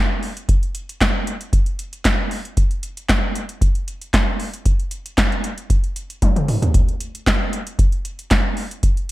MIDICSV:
0, 0, Header, 1, 2, 480
1, 0, Start_track
1, 0, Tempo, 521739
1, 443, Time_signature, 4, 2, 24, 8
1, 8389, End_track
2, 0, Start_track
2, 0, Title_t, "Drums"
2, 209, Note_on_c, 9, 46, 54
2, 301, Note_off_c, 9, 46, 0
2, 338, Note_on_c, 9, 42, 53
2, 430, Note_off_c, 9, 42, 0
2, 448, Note_on_c, 9, 36, 113
2, 449, Note_on_c, 9, 42, 84
2, 540, Note_off_c, 9, 36, 0
2, 541, Note_off_c, 9, 42, 0
2, 578, Note_on_c, 9, 42, 34
2, 670, Note_off_c, 9, 42, 0
2, 687, Note_on_c, 9, 42, 82
2, 779, Note_off_c, 9, 42, 0
2, 822, Note_on_c, 9, 42, 58
2, 914, Note_off_c, 9, 42, 0
2, 928, Note_on_c, 9, 36, 101
2, 932, Note_on_c, 9, 38, 110
2, 933, Note_on_c, 9, 39, 94
2, 933, Note_on_c, 9, 42, 86
2, 1020, Note_off_c, 9, 36, 0
2, 1024, Note_off_c, 9, 38, 0
2, 1025, Note_off_c, 9, 39, 0
2, 1025, Note_off_c, 9, 42, 0
2, 1170, Note_on_c, 9, 42, 77
2, 1262, Note_off_c, 9, 42, 0
2, 1294, Note_on_c, 9, 42, 56
2, 1386, Note_off_c, 9, 42, 0
2, 1406, Note_on_c, 9, 36, 115
2, 1407, Note_on_c, 9, 42, 76
2, 1498, Note_off_c, 9, 36, 0
2, 1499, Note_off_c, 9, 42, 0
2, 1529, Note_on_c, 9, 42, 35
2, 1621, Note_off_c, 9, 42, 0
2, 1647, Note_on_c, 9, 42, 77
2, 1739, Note_off_c, 9, 42, 0
2, 1774, Note_on_c, 9, 42, 53
2, 1866, Note_off_c, 9, 42, 0
2, 1885, Note_on_c, 9, 42, 81
2, 1886, Note_on_c, 9, 36, 105
2, 1888, Note_on_c, 9, 38, 97
2, 1888, Note_on_c, 9, 39, 82
2, 1977, Note_off_c, 9, 42, 0
2, 1978, Note_off_c, 9, 36, 0
2, 1980, Note_off_c, 9, 38, 0
2, 1980, Note_off_c, 9, 39, 0
2, 2126, Note_on_c, 9, 46, 61
2, 2218, Note_off_c, 9, 46, 0
2, 2255, Note_on_c, 9, 42, 46
2, 2347, Note_off_c, 9, 42, 0
2, 2365, Note_on_c, 9, 42, 84
2, 2366, Note_on_c, 9, 36, 106
2, 2457, Note_off_c, 9, 42, 0
2, 2458, Note_off_c, 9, 36, 0
2, 2491, Note_on_c, 9, 42, 36
2, 2583, Note_off_c, 9, 42, 0
2, 2603, Note_on_c, 9, 42, 79
2, 2695, Note_off_c, 9, 42, 0
2, 2734, Note_on_c, 9, 42, 57
2, 2826, Note_off_c, 9, 42, 0
2, 2845, Note_on_c, 9, 36, 110
2, 2846, Note_on_c, 9, 38, 119
2, 2846, Note_on_c, 9, 39, 89
2, 2846, Note_on_c, 9, 42, 86
2, 2937, Note_off_c, 9, 36, 0
2, 2938, Note_off_c, 9, 38, 0
2, 2938, Note_off_c, 9, 39, 0
2, 2938, Note_off_c, 9, 42, 0
2, 3086, Note_on_c, 9, 42, 76
2, 3178, Note_off_c, 9, 42, 0
2, 3211, Note_on_c, 9, 42, 57
2, 3303, Note_off_c, 9, 42, 0
2, 3325, Note_on_c, 9, 36, 116
2, 3327, Note_on_c, 9, 42, 80
2, 3417, Note_off_c, 9, 36, 0
2, 3419, Note_off_c, 9, 42, 0
2, 3451, Note_on_c, 9, 42, 35
2, 3543, Note_off_c, 9, 42, 0
2, 3568, Note_on_c, 9, 42, 71
2, 3660, Note_off_c, 9, 42, 0
2, 3694, Note_on_c, 9, 42, 52
2, 3786, Note_off_c, 9, 42, 0
2, 3805, Note_on_c, 9, 36, 108
2, 3806, Note_on_c, 9, 42, 81
2, 3808, Note_on_c, 9, 38, 97
2, 3808, Note_on_c, 9, 39, 79
2, 3897, Note_off_c, 9, 36, 0
2, 3898, Note_off_c, 9, 42, 0
2, 3900, Note_off_c, 9, 38, 0
2, 3900, Note_off_c, 9, 39, 0
2, 4045, Note_on_c, 9, 46, 62
2, 4137, Note_off_c, 9, 46, 0
2, 4172, Note_on_c, 9, 42, 54
2, 4264, Note_off_c, 9, 42, 0
2, 4283, Note_on_c, 9, 42, 79
2, 4284, Note_on_c, 9, 36, 102
2, 4375, Note_off_c, 9, 42, 0
2, 4376, Note_off_c, 9, 36, 0
2, 4412, Note_on_c, 9, 42, 31
2, 4504, Note_off_c, 9, 42, 0
2, 4518, Note_on_c, 9, 42, 73
2, 4610, Note_off_c, 9, 42, 0
2, 4653, Note_on_c, 9, 42, 61
2, 4745, Note_off_c, 9, 42, 0
2, 4763, Note_on_c, 9, 36, 112
2, 4764, Note_on_c, 9, 38, 111
2, 4765, Note_on_c, 9, 39, 89
2, 4765, Note_on_c, 9, 42, 92
2, 4855, Note_off_c, 9, 36, 0
2, 4856, Note_off_c, 9, 38, 0
2, 4857, Note_off_c, 9, 39, 0
2, 4857, Note_off_c, 9, 42, 0
2, 4896, Note_on_c, 9, 42, 31
2, 4988, Note_off_c, 9, 42, 0
2, 5004, Note_on_c, 9, 42, 79
2, 5096, Note_off_c, 9, 42, 0
2, 5130, Note_on_c, 9, 42, 55
2, 5222, Note_off_c, 9, 42, 0
2, 5243, Note_on_c, 9, 36, 110
2, 5244, Note_on_c, 9, 42, 80
2, 5335, Note_off_c, 9, 36, 0
2, 5336, Note_off_c, 9, 42, 0
2, 5369, Note_on_c, 9, 42, 35
2, 5461, Note_off_c, 9, 42, 0
2, 5483, Note_on_c, 9, 42, 74
2, 5575, Note_off_c, 9, 42, 0
2, 5612, Note_on_c, 9, 42, 52
2, 5704, Note_off_c, 9, 42, 0
2, 5723, Note_on_c, 9, 42, 76
2, 5724, Note_on_c, 9, 36, 97
2, 5724, Note_on_c, 9, 48, 58
2, 5815, Note_off_c, 9, 42, 0
2, 5816, Note_off_c, 9, 36, 0
2, 5816, Note_off_c, 9, 48, 0
2, 5853, Note_on_c, 9, 47, 63
2, 5855, Note_on_c, 9, 42, 39
2, 5945, Note_off_c, 9, 47, 0
2, 5947, Note_off_c, 9, 42, 0
2, 5965, Note_on_c, 9, 46, 58
2, 5966, Note_on_c, 9, 45, 82
2, 6057, Note_off_c, 9, 46, 0
2, 6058, Note_off_c, 9, 45, 0
2, 6094, Note_on_c, 9, 43, 90
2, 6095, Note_on_c, 9, 42, 51
2, 6186, Note_off_c, 9, 43, 0
2, 6187, Note_off_c, 9, 42, 0
2, 6204, Note_on_c, 9, 36, 104
2, 6204, Note_on_c, 9, 42, 83
2, 6296, Note_off_c, 9, 36, 0
2, 6296, Note_off_c, 9, 42, 0
2, 6334, Note_on_c, 9, 42, 34
2, 6426, Note_off_c, 9, 42, 0
2, 6444, Note_on_c, 9, 42, 70
2, 6536, Note_off_c, 9, 42, 0
2, 6577, Note_on_c, 9, 42, 58
2, 6669, Note_off_c, 9, 42, 0
2, 6686, Note_on_c, 9, 36, 107
2, 6691, Note_on_c, 9, 38, 115
2, 6691, Note_on_c, 9, 39, 92
2, 6691, Note_on_c, 9, 42, 82
2, 6778, Note_off_c, 9, 36, 0
2, 6783, Note_off_c, 9, 38, 0
2, 6783, Note_off_c, 9, 39, 0
2, 6783, Note_off_c, 9, 42, 0
2, 6927, Note_on_c, 9, 42, 76
2, 7019, Note_off_c, 9, 42, 0
2, 7053, Note_on_c, 9, 42, 62
2, 7145, Note_off_c, 9, 42, 0
2, 7165, Note_on_c, 9, 36, 125
2, 7166, Note_on_c, 9, 42, 80
2, 7257, Note_off_c, 9, 36, 0
2, 7258, Note_off_c, 9, 42, 0
2, 7290, Note_on_c, 9, 42, 33
2, 7382, Note_off_c, 9, 42, 0
2, 7406, Note_on_c, 9, 42, 74
2, 7498, Note_off_c, 9, 42, 0
2, 7533, Note_on_c, 9, 42, 48
2, 7625, Note_off_c, 9, 42, 0
2, 7643, Note_on_c, 9, 42, 81
2, 7645, Note_on_c, 9, 36, 116
2, 7645, Note_on_c, 9, 38, 98
2, 7646, Note_on_c, 9, 39, 72
2, 7735, Note_off_c, 9, 42, 0
2, 7737, Note_off_c, 9, 36, 0
2, 7737, Note_off_c, 9, 38, 0
2, 7738, Note_off_c, 9, 39, 0
2, 7883, Note_on_c, 9, 46, 58
2, 7975, Note_off_c, 9, 46, 0
2, 8015, Note_on_c, 9, 42, 56
2, 8107, Note_off_c, 9, 42, 0
2, 8124, Note_on_c, 9, 36, 100
2, 8124, Note_on_c, 9, 42, 83
2, 8216, Note_off_c, 9, 36, 0
2, 8216, Note_off_c, 9, 42, 0
2, 8254, Note_on_c, 9, 42, 36
2, 8346, Note_off_c, 9, 42, 0
2, 8389, End_track
0, 0, End_of_file